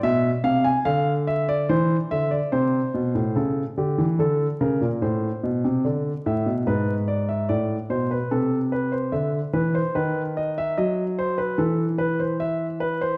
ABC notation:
X:1
M:4/4
L:1/16
Q:1/4=73
K:Aphr
V:1 name="Grand piano"
e2 f ^g f2 e d c2 e d c4 | A2 G2 A2 B2 c4 d2 e2 | =B2 d e d2 c B A2 B c e2 B c | =B2 ^d e d2 c B A2 B c e2 B c |]
V:2 name="Grand piano" clef=bass
=B,,2 C,2 D,4 E,2 D,2 C,2 B,, A,, | ^C,2 D, E, D,2 C, B,, A,,2 =B,, =C, D,2 A,, B,, | ^G,,4 A,,2 =B,,2 C,4 D,2 E,2 | ^D,4 ^F,4 E,8 |]